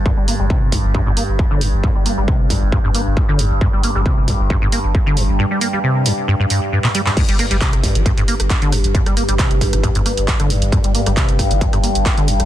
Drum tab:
CC |----------------|----------------|----------------|----------------|
HH |--o---o---o---o-|--o---o---o---o-|--o---o---o---o-|--o---o---o---o-|
CP |----------------|----------------|----------------|-------------x-x|
SD |----------------|----------------|----------------|----------------|
BD |o---o-o-o---o---|o---o-o-o---o---|o---o-o-o---o---|----------------|

CC |x---------------|----------------|----------------|
HH |xxoxxxoxxxoxxxox|xxoxxxoxxxoxxxox|xxoxxxoxxxoxxxox|
CP |----x-------x---|----x-------x---|----x-------x---|
SD |--r--r--r--r--r-|-r--r--r--r--r--|r--r--r--r--r--r|
BD |o---o-o-o---o---|o---o-o-o---o---|o---o-o-o---o---|